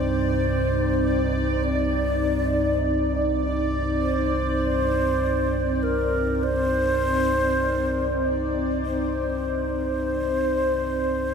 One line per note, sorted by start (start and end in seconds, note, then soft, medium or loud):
0.00 11.34 C2 medium
0.00 3.81 G2 medium
0.00 11.34 G2 medium
0.00 11.34 C4 medium
0.00 11.34 D#4 medium
0.00 1.65 C5 medium
0.00 11.34 D5 medium
1.63 3.44 D5 loud
4.01 5.85 C5 loud
5.83 6.45 A#4 loud
6.44 8.57 C5 loud
8.85 11.34 C5 loud